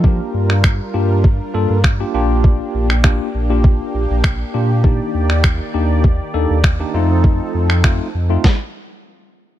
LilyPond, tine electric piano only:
\new Staff \with { instrumentName = "Tine electric piano" } { \time 4/4 \key bes \major \tempo 4 = 100 <bes d' f' g'>8. r8. <bes d' f' g'>8 r8 <bes d' f' a'>8 r16 <bes d' f' g'>16 <bes d' f' g'>8~ | <bes d' f' g'>8. r16 <bes d' f' g'>8 r16 <bes d' f' g'>4 r8. <bes d' f' g'>16 r16 | <bes d' ees' g'>8. r8. <bes d' ees' g'>8 r8 <bes d' ees' a'>8 r16 <bes d' ees' g'>16 <a c' ees' f'>8~ | <a c' ees' f'>8. r16 <a c' ees' f'>8 r16 <a c' ees' f'>16 r2 | }